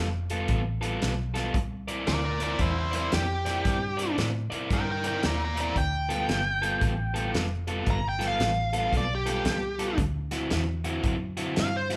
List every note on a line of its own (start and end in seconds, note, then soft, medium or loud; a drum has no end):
0.00 0.49 F1 medium
0.30 0.60 G3 medium
0.30 0.60 B3 medium
0.30 0.60 F4 medium
0.30 0.60 A4 medium
0.30 closed hi-hat medium
0.48 1.00 A1 medium
0.48 kick medium
0.48 closed hi-hat medium
0.81 1.12 G3 medium
0.81 1.12 B3 medium
0.81 1.12 F4 medium
0.81 1.11 A4 medium
0.81 closed hi-hat medium
1.02 1.54 B1 medium
1.02 snare loud
1.02 closed hi-hat medium
1.34 1.55 G3 medium
1.34 1.55 B3 medium
1.34 1.55 F4 medium
1.34 1.54 A4 medium
1.34 snare soft
1.34 closed hi-hat medium
1.54 2.06 C2 medium
1.54 kick loud
1.54 closed hi-hat medium
1.88 2.18 C4 medium
1.88 2.18 E4 medium
1.88 2.17 A#4 medium
1.88 2.17 D5 medium
1.88 closed hi-hat medium
2.07 2.59 D2 medium
2.07 2.24 A#4 medium
2.07 2.25 D5 medium
2.07 snare loud
2.07 closed hi-hat medium
2.25 2.41 A#4 medium
2.25 2.43 D5 medium
2.40 2.71 C4 medium
2.40 2.70 E4 medium
2.40 2.70 A#4 medium
2.40 2.59 A#4 medium
2.40 2.70 D5 medium
2.40 2.61 D5 medium
2.40 closed hi-hat medium
2.59 3.11 E2 medium
2.59 2.77 E4 medium
2.59 2.78 C5 medium
2.59 kick loud
2.59 closed hi-hat medium
2.79 2.94 E4 medium
2.79 2.95 C5 medium
2.92 3.23 C4 medium
2.92 3.22 E4 medium
2.92 3.11 E4 medium
2.92 3.22 A#4 medium
2.92 3.22 D5 loud
2.92 closed hi-hat medium
2.96 3.13 C5 medium
3.12 3.64 F2 medium
3.12 4.16 G4 medium
3.12 snare loud
3.12 closed hi-hat medium
3.46 3.76 C4 medium
3.46 3.76 E4 medium
3.46 3.75 A#4 medium
3.46 3.75 D5 medium
3.46 snare soft
3.46 closed hi-hat medium
3.65 4.17 G2 medium
3.65 kick loud
3.65 snare soft
3.65 closed hi-hat medium
3.97 4.28 C4 medium
3.97 4.28 E4 medium
3.97 4.28 A#4 medium
3.97 4.28 D5 medium
3.97 closed hi-hat medium
4.18 4.49 A2 medium
4.18 snare loud
4.18 closed hi-hat medium
4.50 4.81 C4 medium
4.50 4.81 E4 medium
4.50 4.81 A#4 medium
4.50 4.80 D5 medium
4.50 muted fingered electric bass stroke soft
4.50 closed hi-hat medium
4.70 5.22 G2 medium
4.70 4.90 A#4 medium
4.70 4.89 G5 medium
4.70 kick loud
4.70 snare soft
4.70 closed hi-hat medium
4.91 5.06 A#4 medium
4.91 5.06 G5 medium
5.04 5.34 C4 medium
5.04 5.34 E4 medium
5.04 5.34 A#4 medium
5.04 5.23 A#4 medium
5.04 5.34 D5 medium
5.04 5.24 G5 medium
5.04 closed hi-hat medium
5.23 5.75 D#2 medium
5.23 5.41 D5 medium
5.23 5.42 A#5 medium
5.23 snare loud
5.23 closed hi-hat medium
5.44 5.59 D5 medium
5.44 5.60 A#5 medium
5.56 5.77 C4 medium
5.56 5.77 E4 medium
5.56 5.76 A#4 medium
5.56 5.76 D5 medium
5.56 closed hi-hat medium
5.61 5.77 A#5 medium
5.76 6.27 D2 medium
5.76 7.31 G5 medium
5.76 kick loud
5.76 closed hi-hat medium
6.09 6.39 G3 medium
6.09 6.39 B3 medium
6.09 6.39 F4 medium
6.09 6.39 A4 medium
6.09 closed hi-hat medium
6.29 6.80 G1 medium
6.29 snare loud
6.29 closed hi-hat medium
6.62 6.93 G3 medium
6.62 6.92 B3 medium
6.62 6.92 F4 medium
6.62 6.92 A4 medium
6.62 closed hi-hat medium
6.81 7.33 A1 medium
6.81 kick loud
6.81 closed hi-hat medium
7.14 7.45 G3 medium
7.14 7.45 B3 medium
7.14 7.45 F4 medium
7.14 7.44 A4 medium
7.14 closed hi-hat medium
7.34 7.86 F1 medium
7.34 snare loud
7.34 closed hi-hat medium
7.67 7.98 G3 medium
7.67 7.98 B3 medium
7.67 7.97 F4 medium
7.67 7.97 A4 medium
7.67 closed hi-hat medium
7.86 8.38 G1 medium
7.86 kick loud
7.86 closed hi-hat medium
7.91 8.06 A#5 medium
8.09 8.24 G5 medium
8.19 8.50 G3 medium
8.19 8.50 B3 medium
8.19 8.49 F4 medium
8.19 8.50 A4 medium
8.19 snare soft
8.19 closed hi-hat medium
8.28 8.94 F5 medium
8.40 8.91 A1 medium
8.40 snare loud
8.40 closed hi-hat medium
8.73 9.03 G3 medium
8.73 9.03 B3 medium
8.73 9.03 F4 medium
8.73 9.03 A4 medium
8.73 closed hi-hat medium
8.92 9.44 B1 medium
8.92 kick loud
8.92 closed hi-hat medium
8.97 9.12 D5 medium
9.15 9.28 G4 medium
9.26 9.56 G3 medium
9.26 9.56 B3 medium
9.26 9.56 F4 medium
9.26 9.97 G4 medium
9.26 9.56 A4 medium
9.26 closed hi-hat medium
9.45 9.97 C2 medium
9.45 snare loud
9.45 closed hi-hat medium
9.79 9.99 G3 medium
9.79 9.99 B3 medium
9.79 9.99 F4 medium
9.79 9.99 A4 medium
9.79 closed hi-hat medium
9.98 10.50 D2 medium
9.98 kick loud
9.98 closed hi-hat medium
10.31 10.62 D3 medium
10.31 10.62 C4 medium
10.31 10.62 E4 medium
10.31 10.61 F#4 medium
10.31 snare soft
10.31 closed hi-hat medium
10.50 11.03 E2 medium
10.50 snare loud
10.50 closed hi-hat medium
10.84 11.15 D3 medium
10.84 11.15 C4 medium
10.84 11.14 E4 medium
10.84 11.14 F#4 medium
10.84 closed hi-hat medium
11.04 11.55 F#2 medium
11.04 kick loud
11.04 closed hi-hat medium
11.37 11.67 D3 medium
11.37 11.67 C4 medium
11.37 11.67 E4 medium
11.37 11.67 F#4 loud
11.37 closed hi-hat medium
11.56 11.96 G2 medium
11.56 11.76 F5 loud
11.56 snare loud
11.56 closed hi-hat medium
11.77 11.93 C5 medium
11.90 11.96 D3 medium
11.90 11.96 C4 medium
11.90 11.96 E4 medium
11.90 11.96 F#4 medium
11.90 snare soft
11.90 closed hi-hat medium